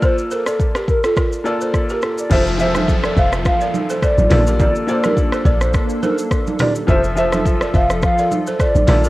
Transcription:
Already playing: grand piano A#3 F4 A4 D5
0.02 balafon F4 A#4, soft synth lead C5, kick, shaker
0.18 shaker
0.31 balafon A4 C5, soft synth lead A#4, shaker
0.46 soft synth lead A4, balafon A#4 D5, cross-stick, shaker
0.60 kick, shaker
0.75 balafon G4 A#4, cross-stick, shaker
0.88 soft synth lead A#4, kick, shaker
1.04 balafon F4 A4, soft synth lead A4, cross-stick, shaker
1.17 balafon F4 A#4, kick, cross-stick, shaker
1.33 shaker
1.44 grand piano A#3 F4 A4 D5, balafon A#4 D5, soft synth lead D5, shaker
1.61 balafon A4 C5, shaker
1.74 kick, cross-stick, shaker
1.89 balafon G4 A#4, soft synth lead A#4, shaker
2.02 balafon F4 A4, cross-stick, shaker
2.18 soft synth lead D5, shaker
2.30 log drum bass F1, grand piano F3 F4 A4 E5, analog synth pad F3 F4 A4, soft synth lead C5, kick, crash, downlifter, low conga, shaker
2.47 shaker
2.58 grand piano F3 F4 G#4 E5, soft synth lead C5, balafon C5 E5, shaker
2.66 grand piano A4
2.75 balafon A4 C5, soft synth lead E5, cross-stick, high conga, shaker
2.88 kick, shaker
3.04 balafon A#4 D5, cross-stick, shaker
3.17 log drum bass F1, balafon C5 E5, soft synth lead F5, kick, shaker
3.33 cross-stick, shaker
3.45 soft synth lead F5, kick, cross-stick, shaker
3.61 balafon A#4 D5, shaker
3.74 high conga, shaker
3.90 balafon A4 C5, shaker
4.02 balafon A4 C5, soft synth lead D5, kick, cross-stick, shaker
4.18 log drum bass A1, high conga, shaker
4.30 log drum bass A#1, grand piano A#3 F4 A4 D5, analog synth pad A#3 D4 A4, balafon A#4 D5, cross-stick, mid tom, open hi-hat, high conga, low conga, shaker
4.47 balafon G4 A#4, shaker
4.60 soft synth lead D5, kick, low conga, shaker
4.75 shaker
4.87 grand piano A#3 F4 A4 D5, balafon A#4 D5, soft synth lead C5, shaker
5.04 balafon G4 A#4, soft synth lead A#4, cross-stick, high conga, shaker
5.17 kick, shaker
5.32 balafon A4 C5, cross-stick, shaker
5.45 log drum bass A#1, balafon A#4 D5, soft synth lead D5, kick, shaker
5.61 soft synth lead C5, cross-stick, shaker
5.74 kick, cross-stick, shaker
5.90 shaker
6.03 balafon A4 C5, soft synth lead A#4, high conga, shaker
6.18 shaker
6.31 kick, cross-stick, shaker
6.47 high conga, shaker
6.59 balafon G4 A#4, soft synth lead D5, cross-stick, mid tom, open hi-hat, high conga, low conga, shaker
6.76 shaker
6.87 log drum bass F1, grand piano F3 F4 A4 E5, analog synth pad F3 F4 A4, soft synth lead C5, kick, low conga, shaker
7.04 shaker
7.15 grand piano F3 F4 A4 E5, soft synth lead C5, balafon C5 E5, shaker
7.32 balafon A4 C5, soft synth lead E5, cross-stick, high conga, shaker
7.45 kick, shaker
7.61 balafon A#4 D5, cross-stick, shaker
7.74 log drum bass F1, balafon C5 E5, soft synth lead F5, kick, shaker
7.90 cross-stick, shaker
8.02 soft synth lead F5, kick, cross-stick, shaker
8.18 balafon A#4 D5, shaker
8.31 high conga, shaker
8.47 balafon A4 C5, shaker
8.60 balafon A4 C5, soft synth lead D5, kick, cross-stick, shaker
8.75 log drum bass A1, high conga, shaker
8.87 log drum bass A#1, grand piano A#3 F4 A4 D5, analog synth pad A#3 D4 A4, balafon A#4 D5, cross-stick, mid tom, open hi-hat, high conga, low conga, shaker
9.04 balafon G4 A#4, shaker

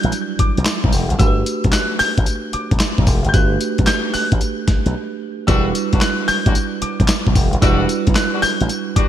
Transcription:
Already playing: tine electric piano F#3 G3 D4 E4 F#4 D5, grand piano G6
0.03 slap bass A1, closed hi-hat
0.12 closed hi-hat, tambourine
0.39 grand piano D6, muted slap bass stroke, kick, closed hi-hat
0.57 slap bass B1, closed hi-hat
0.65 snare, clap, closed hi-hat, tambourine
0.84 slap bass B1, kick
0.92 slap bass E1, open hi-hat, tambourine
1.10 slap bass F#1, closed hi-hat
1.18 slap bass G1, tine electric piano A3 D4 F#4 G4 A#4, grand piano E6, kick, closed hi-hat, tambourine
1.27 tine electric piano B4
1.46 closed hi-hat, tambourine
1.64 slap bass B1, kick, closed hi-hat
1.72 grand piano F#6, snare, clap, closed hi-hat, tambourine
1.99 grand piano G6, muted slap bass stroke, open hi-hat, tambourine
2.18 slap bass A1, kick, closed hi-hat
2.26 closed hi-hat, tambourine
2.53 grand piano D6, muted slap bass stroke, closed hi-hat
2.71 slap bass B1, kick, closed hi-hat
2.79 snare, clap, closed hi-hat, tambourine
2.98 slap bass B1, kick
3.07 slap bass E1, kick, open hi-hat, tambourine
3.25 slap bass F#1, closed hi-hat
3.29 grand piano G6
3.33 slap bass G1, tine electric piano A3 D4 F#4 G4 B4, grand piano F#6, kick, closed hi-hat, tambourine
3.61 closed hi-hat, tambourine
3.78 slap bass B1, kick, closed hi-hat
3.87 grand piano G6, snare, clap, closed hi-hat, tambourine
4.14 grand piano F#6, muted slap bass stroke, open hi-hat, tambourine
4.32 slap bass A1, kick, closed hi-hat
4.41 closed hi-hat, tambourine
4.68 muted slap bass stroke, kick, snare, closed hi-hat
4.86 slap bass B1, closed hi-hat
5.47 slap bass E1, tine electric piano G3 D4 E4 F#4 B4, horn section G3 D4 F#4, grand piano E6, kick, closed hi-hat, tambourine
5.75 closed hi-hat, tambourine
5.92 slap bass B1, horn section G3 D4 F#4, kick, closed hi-hat
6.01 grand piano F#6, snare, clap, closed hi-hat, tambourine
6.28 grand piano G6, muted slap bass stroke, open hi-hat, tambourine
6.46 slap bass A1, horn section G3 D4 F#4, kick, closed hi-hat
6.55 closed hi-hat, tambourine
6.82 grand piano D6, muted slap bass stroke, closed hi-hat
7.00 slap bass B1, kick, closed hi-hat
7.08 snare, clap, closed hi-hat, tambourine
7.27 slap bass B1, kick
7.35 slap bass E1, kick, open hi-hat, tambourine
7.53 slap bass F#1, closed hi-hat
7.61 slap bass E1, tine electric piano G3 D4 E4 F#4 B4, horn section G3 D4 F#4, grand piano E6, kick, closed hi-hat, tambourine
7.89 closed hi-hat, tambourine
8.07 slap bass B1, kick, closed hi-hat
8.15 grand piano F#6, snare, clap, closed hi-hat, tambourine
8.34 horn section G3 D4 F#4
8.42 grand piano G6, muted slap bass stroke, open hi-hat, tambourine
8.61 slap bass A1, closed hi-hat
8.69 closed hi-hat, tambourine
8.96 horn section G3 D4 F#4, grand piano D6, muted slap bass stroke, kick, closed hi-hat

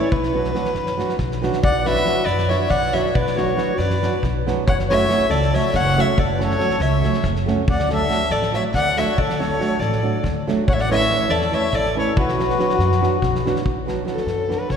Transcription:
Already playing: violin C#5
0.11 upright bass B1, violin B4, kick
0.23 snare
0.33 nylon-string guitar F#3 B3 D4 F#4
0.44 snare
0.54 nylon-string guitar F#3 B3 D4 F#4, snare
0.65 snare
0.75 upright bass F#2, snare
0.86 snare
0.97 nylon-string guitar F#3 B3 D4 F#4, snare
1.09 snare
1.18 upright bass B1, kick, snare
1.31 snare
1.42 nylon-string guitar F#3 B3 D4 F#4, snare
1.53 snare
1.63 upright bass B1, accordion D5, violin F#5, kick
1.79 accordion D5, violin F#5
1.85 nylon-string guitar F#3 B3 D4 F#4, accordion B4, violin E5, snare
2.05 nylon-string guitar F#3 B3 D4 F#4, snare
2.24 upright bass F#2, accordion B4, violin D5, snare
2.38 snare
2.48 nylon-string guitar F#3 B3 D4 F#4, accordion C#5, violin E5, snare
2.68 upright bass B1, accordion D5, violin F#5, kick, snare
2.92 nylon-string guitar F#3 B3 D4 F#4, accordion C#5, violin E5, snare
3.13 upright bass B1, accordion B4, violin D5, kick
3.27 snare
3.36 nylon-string guitar F#3 B3 D4 F#4, accordion F#4, violin C#5, snare
3.57 nylon-string guitar F#3 B3 D4 F#4, snare
3.76 upright bass F#2, accordion B4, violin D5, snare
3.90 snare
4.02 nylon-string guitar F#3 B3 D4 F#4, snare
4.23 upright bass B1, kick, snare
4.46 nylon-string guitar F#3 B3 D4 F#4, snare
4.67 upright bass F#1, accordion C#5, violin F#5, kick
4.79 snare
4.89 nylon-string guitar F#3 A3 C#4 F#4, accordion C#5, violin E5, snare
5.09 nylon-string guitar F#3 A3 C#4 F#4, snare
5.29 upright bass C#2, accordion A4, violin D5, snare
5.42 snare
5.53 nylon-string guitar F#3 A3 C#4 F#4, accordion C#5, violin E5, snare
5.74 upright bass F#1, accordion C#5, violin F#5, kick, snare
5.96 nylon-string guitar F#3 A3 C#4 F#4, accordion C#5, violin E5, snare
6.17 upright bass F#1, accordion A4, violin D5, kick
6.33 accordion B4, violin D5
6.38 nylon-string guitar F#3 A3 C#4 F#4, snare
6.42 accordion A4, violin C#5
6.50 snare
6.58 nylon-string guitar F#3 A3 C#4 F#4, snare
6.70 snare
6.79 upright bass C#2, accordion C#5, violin E5, snare
7.02 nylon-string guitar F#3 A3 C#4 F#4, snare
7.14 snare
7.24 upright bass F#1, kick, snare
7.36 snare
7.46 nylon-string guitar F#3 A3 C#4 F#4, snare
7.68 upright bass D2, accordion D5, violin F#5, kick
7.79 snare
7.89 nylon-string guitar F#3 A3 D4 F#4, accordion A4, snare
7.94 violin E5
8.08 nylon-string guitar F#3 A3 D4 F#4, snare
8.30 upright bass A1, accordion A4, violin D5, snare
8.42 snare
8.52 nylon-string guitar F#3 A3 D4 F#4, accordion C#5, violin E5, snare
8.73 upright bass D2, accordion D5, violin F#5, kick, snare
8.97 nylon-string guitar F#3 A3 D4 F#4, accordion C#5, violin E5, snare
9.18 upright bass D2, accordion A4, violin D5, kick
9.30 snare
9.39 nylon-string guitar F#3 A3 D4 F#4, accordion A4, violin C#5, snare
9.59 nylon-string guitar F#3 A3 D4 F#4, snare
9.79 upright bass A1, accordion A4, violin D5, snare
9.92 snare
10.03 nylon-string guitar F#3 A3 D4 F#4
10.23 upright bass D2, kick, snare
10.47 nylon-string guitar F#3 A3 D4 F#4, snare
10.68 upright bass A1, accordion C#5, violin F#5, kick
10.73 accordion C#5, violin E5
10.79 accordion D5, violin F#5, snare
10.89 nylon-string guitar E3 A3 C#4 E4, accordion C#5, violin E5, snare
11.08 nylon-string guitar E3 A3 C#4 E4, snare
11.29 upright bass E2, accordion A4, violin D5, snare
11.41 snare
11.52 nylon-string guitar E3 A3 C#4 E4, accordion C#5, violin E5, snare
11.73 upright bass A1, accordion A4, violin D5, kick, snare
11.95 nylon-string guitar E3 A3 C#4 E4, accordion A4
11.99 violin C#5
12.16 upright bass B1, accordion F#4, violin B4, kick
12.28 snare
12.39 nylon-string guitar F#3 B3 D4 F#4, snare
12.50 snare
12.59 nylon-string guitar F#3 B3 D4 F#4, snare
12.70 snare
12.78 upright bass F#2, snare
12.92 snare
13.01 nylon-string guitar F#3 B3 D4 F#4, snare
13.22 upright bass B1, kick, snare
13.35 snare
13.45 nylon-string guitar F#3 B3 D4 F#4, snare
13.56 snare
13.66 upright bass B1, kick
13.86 nylon-string guitar F#3 B3 D4 F#4, snare
14.05 nylon-string guitar F#3 B3 D4 F#4, snare
14.10 violin A4
14.17 snare
14.26 upright bass F#2, snare
14.48 nylon-string guitar F#3 B3 D4 F#4, snare
14.53 violin B4
14.70 upright bass B1, violin C#5, kick, snare

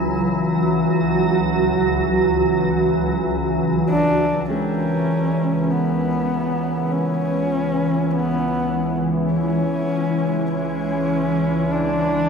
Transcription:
Already playing: synth drone C#2 E3, ambient pad C#2 F#3 F#4, singing bowl E3 E4
3.90 horsehead fiddle D4
4.49 synth drone C#2 E3, ambient pad E3, singing bowl G#3 G#4, horsehead fiddle C#4
5.49 ambient pad G#3
5.70 horsehead fiddle B3
6.92 horsehead fiddle C#4
7.04 ambient pad E4
8.11 horsehead fiddle B3
9.32 horsehead fiddle C#4
10.52 horsehead fiddle C#4
11.71 horsehead fiddle D4

